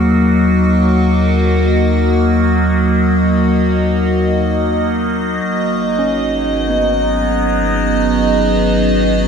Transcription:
Already playing: D#2 F#3 A#3 D#4 F#4 G#4 C#5 D#5 F#5
5.43 G#1 F#3
5.88 B3
5.99 C#4 G#4
6.70 B3

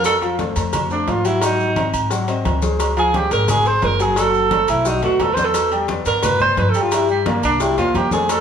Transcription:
Already playing: F2
0.04 A4, cowbell, high conga, low agogo, maracas
0.22 F3 F4 F5, high conga, low agogo, maracas
0.39 A3 A4 C5, cowbell, high conga, low timbale, maracas
0.56 F2 A3 A4 C5, cowbell, high conga, low agogo, maracas
0.73 cowbell, high conga, low conga, low agogo, maracas
0.90 A3 D4 A4 C5, high conga, maracas
1.08 G#2 F4, cowbell, high conga, low timbale, low agogo, maracas
1.25 F#3 E4 F#4 F#5, high conga, low agogo, maracas
1.41 F#3 D#4 F#4 F#5, cowbell, high conga, low agogo, maracas
1.59 high conga, maracas
1.76 C4 C5 D#5, cowbell, high conga, low timbale, low agogo, maracas
1.94 G#2, high conga, low agogo, maracas
2.11 F#3 F#4 F#5, cowbell, high conga, maracas
2.28 C4 C5 D#5, cowbell, high conga, low agogo, maracas
2.45 C#2, cowbell, high conga, low timbale, low agogo, maracas
2.62 G#3 G#4 C5, cowbell, high conga, maracas
2.80 cowbell, high conga, low agogo, maracas
2.97 F3 F4 G#4 F5, high conga, low agogo, maracas
3.13 G#3 G4 G#4 C5, cowbell, high conga, low timbale, maracas
3.30 G#1 G#3 G#4 A#4 C5, cowbell, high conga, low agogo, maracas
3.48 G#4, cowbell, high conga, low conga, low agogo, maracas
3.64 G#3 G#4 C5, high conga, maracas
3.82 F#1 A#4, cowbell, high conga, low timbale, low agogo, maracas
3.99 F#3 F#4 G#4 F#5, high conga, low agogo, maracas
4.16 F#3 F#4 A4 F#5, cowbell, high conga, low agogo, maracas
4.34 high conga, maracas
4.51 A3 A4 C5, cowbell, high conga, low timbale, low agogo, maracas
4.68 B1 E4, high conga, low agogo, maracas
4.85 F#3 D#4 F#4 F#5, cowbell, high conga, maracas
5.02 D#2 A3 F#4 A4 B4, cowbell, high conga, low agogo, maracas
5.20 E2 A4, cowbell, high conga, low timbale, low agogo, maracas
5.34 B3 B4 C5, cowbell, high conga, maracas
5.38 D5
5.45 A4
5.54 cowbell, high conga, low agogo, maracas
5.72 G3 G4 G5, high conga, low agogo, maracas
5.88 B3 B4 D5, cowbell, high conga, low timbale, maracas
6.05 G2 B3 A#4 B4 D5, cowbell, high conga, low agogo, maracas
6.23 B4, cowbell, high conga, low conga, low agogo, maracas
6.40 B3 B4 C5 D5, high conga, low conga, maracas
6.57 G2 B4, cowbell, high conga, low timbale, low agogo, maracas
6.70 A4
6.74 G3 G4 G5, high conga, low agogo, maracas
6.81 F4
6.92 G3 E4 G4 G5, cowbell, high conga, low agogo, maracas
7.09 G3, high conga, maracas
7.26 A#3 A#4 D5, cowbell, high conga, low timbale, low agogo, maracas
7.43 C2 D4, high conga, low agogo, maracas
7.60 G3 E4 G4 G5, cowbell, high conga, maracas
7.77 E2 A#3 F4 A#4 C5, cowbell, high conga, low agogo, maracas
7.94 F2 G4, cowbell, high conga, low timbale, low agogo, maracas
8.11 A3 G#4 A4 C5, cowbell, high conga, maracas
8.29 A4, cowbell, high conga, low agogo, maracas

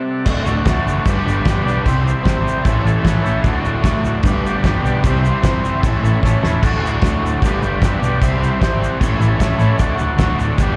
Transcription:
Already playing: C3 C4
0.08 A4 D5 F#5
0.26 D1 D2 A2 D3 A3 A4, kick, crash, shaker
0.30 F#4 D5 F#5
0.45 D1 A3 F#4 A4 D5, shaker
0.50 D3 F#5
0.65 D1 A2 D3 A4 D5 A5, kick, snare, crash, shaker
0.70 A3 F#4
0.86 F#1 A4 D5 F#5, shaker
1.05 G1 G2 D3 G3 B4 D5 G5, kick, crash, shaker
1.09 B3 D4 G4
1.25 G1 D4 G4 B4 D5 G5, shaker
1.30 G3 B3
1.43 G1 G3 B4 D5 G5, kick, snare, crash
1.48 B3 D4 G4, shaker
1.64 B1 D4 G4 B4 D5 G5
1.68 G3 B3, shaker
1.84 C2 C3 G3 C4 E4 G4 C5 E5, kick, crash, shaker
1.89 C5
2.04 E4 G4 C5 E5, shaker
2.10 C4
2.24 G#1 C4 E4 G4 C5 E5, kick, snare, crash
2.28 C5, shaker
2.44 G4 C5 G5, shaker
2.64 A1 A2 E3 A3 C#4 E4 A4 C#5 E5, kick, crash, shaker
2.68 A4
2.83 A1 C#4 E4 A4 C#5, shaker
2.87 A3 E5 A5
3.03 A1 A3 C#4 E4 A4 C#5 E5 F#5, kick, snare, crash, shaker
3.08 A4
3.22 A1 E4 A4 C#5 E5 G5, shaker
3.27 A3 C#4
3.43 D1 D2 A2 D3 A3 F#4 A4 D5, kick, crash, shaker
3.48 F#4
3.63 D1 A3 F#4 A4 D5, shaker
3.68 D3
3.83 D1 A2 D3 A3 F#4 A4 D5, kick, snare, crash, shaker
3.88 F#4
4.02 D1 F#4 A4 D5, shaker
4.23 G1 G2 D3 G3 B3 G4 B4 D5, kick, crash, shaker
4.27 D4 G4
4.42 G1 D4 G4 B4 D5, shaker
4.47 G3 B3
4.63 G1 G3 B3 D4 G4 B4 D5, kick, snare, crash, shaker
4.67 G4
4.83 B1 B3 D4 G4 B4 D5, shaker
4.89 G3
5.02 C2 C3 G3 C4 E4 G4 C5, kick, crash, shaker
5.07 C5 E5
5.21 G4 C5 E5
5.25 C4 E4, shaker
5.42 G1 C4 E4 G4 C5 E5, kick, snare, crash, shaker
5.47 C5
5.65 G4 C5, shaker
5.69 E5
5.82 A1 A2 E3 A3 C#4 A4 C#5 E5, kick, crash, shaker
5.86 E4 A4
6.02 A1 E4 A4 C#5 E5, shaker
6.06 A3 C#4
6.22 A1 A3 C#4 E4 A4 C#5 E5, kick, snare
6.26 A4, shaker
6.43 E1 C#4 E4 A4 C#5 E5, snare, shaker
6.47 A3
6.61 D1 D2 A2 D3 A3 F#4 A4 D5, kick, crash, shaker
6.66 F#4
6.81 D1 A3 F#4 A4 D5
6.86 D3, shaker
7.01 D1 A2 D3 A3 F#4 A4 D5, kick, snare, crash
7.05 F#4, shaker
7.23 D1 F#4 A4 D5, shaker
7.42 G1 G2 D3 G3 B3 D4 G4 B4, kick, crash, shaker
7.46 D5
7.61 G1 B3 D4 G4, shaker
7.65 G3 B4 D5
7.81 G1 G3 B3 D4, kick, snare, crash, shaker
7.85 G4 B4 E5
8.00 B1 B3 D4 G4, shaker
8.04 G3 G4 B4 D5
8.20 C2 C3 G3 C4 E4 G4 C5 E5, kick, crash, shaker
8.25 C5
8.40 E4 G4 C5, shaker
8.44 C4 C5 E5
8.59 G#1 C4 E4 G4 C5, kick, snare, crash, shaker
8.64 C5 G5
8.80 G4 C5 F#5, shaker
9.00 A1 A2 E3 A3 C#4 E4 A4 C#5 E5, kick, crash, shaker
9.04 A4
9.18 A1 E4 A4 C#5 E5, shaker
9.22 A3 C#4
9.37 A1 A3 C#4 E4 A4 C#5 E5, kick, crash, shaker
9.41 A4, snare
9.58 A1 C#4 E4 A4 C#5 E5, shaker
9.62 A3
9.77 D1 D2 A2 D3 A3 A4 D5 F#5, kick, crash, shaker
9.81 F#4
9.95 A3 F#4 A4, shaker
10.00 D1 D3 D5 F#5
10.17 D1 A2 D3 A3 A4 D5, kick, snare, crash, shaker
10.22 F#4 F#5
10.39 D1 A4, shaker
10.43 D5 F#5
10.58 G1 G2 D3 G3 B3, kick, crash, shaker
10.62 D4 G4 B4 D5 G5

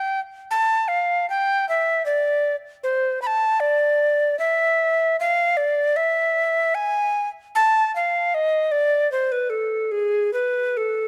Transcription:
Already playing: G5
0.51 A5
0.88 F5
1.30 G5
1.69 E5
2.06 D5
2.84 C5
3.22 B5
3.27 A5
3.60 D5
4.39 E5
5.20 F5
5.57 D5
5.96 E5
6.75 G#5
7.55 A5
7.96 F5
8.34 D#5
8.72 D5
9.12 C5
9.32 B4
9.50 A4
9.91 G#4
10.33 B4
10.77 A4

